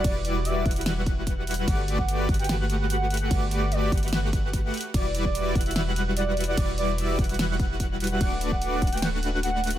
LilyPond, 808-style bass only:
\new Staff \with { instrumentName = "808-style bass" } { \clef bass \time 4/4 \key e \minor \tempo 4 = 147 e,,4. e,,2~ e,,8 | g,,4. g,,2~ g,,8 | g,,4. g,,2 r8 | e,,4. e,,2~ e,,8 |
e,,4. e,,2~ e,,8 | d,,4. d,,2~ d,,8 | }